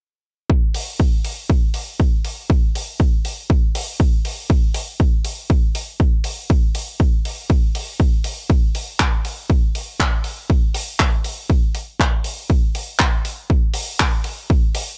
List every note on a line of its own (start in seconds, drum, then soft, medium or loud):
0.50 kick loud
0.74 open hi-hat medium
1.00 kick loud
1.25 open hi-hat medium
1.50 kick loud
1.74 open hi-hat loud
2.00 kick medium
2.25 open hi-hat medium
2.50 kick loud
2.75 open hi-hat loud
3.00 kick loud
3.25 open hi-hat medium
3.50 kick loud
3.75 open hi-hat loud
4.00 kick loud
4.25 open hi-hat medium
4.50 kick loud
4.74 open hi-hat loud
5.00 kick loud
5.25 open hi-hat medium
5.50 kick loud
5.75 open hi-hat loud
6.00 kick loud
6.24 open hi-hat loud
6.50 kick loud
6.75 open hi-hat loud
7.00 kick loud
7.25 open hi-hat medium
7.50 kick loud
7.75 open hi-hat loud
8.00 kick loud
8.24 open hi-hat loud
8.50 kick loud
8.75 open hi-hat medium
9.00 kick loud
9.00 clap loud
9.25 open hi-hat medium
9.50 kick loud
9.75 open hi-hat medium
10.00 kick loud
10.00 clap medium
10.24 open hi-hat medium
10.50 kick loud
10.74 open hi-hat loud
11.00 kick medium
11.00 clap medium
11.24 open hi-hat medium
11.50 kick loud
11.75 open hi-hat medium
12.00 kick loud
12.00 clap medium
12.24 open hi-hat medium
12.50 kick loud
12.75 open hi-hat loud
12.99 kick medium
12.99 clap loud
13.25 open hi-hat medium
13.50 kick loud
13.74 open hi-hat loud
14.00 kick medium
14.00 clap loud
14.24 open hi-hat medium
14.50 kick loud
14.75 open hi-hat loud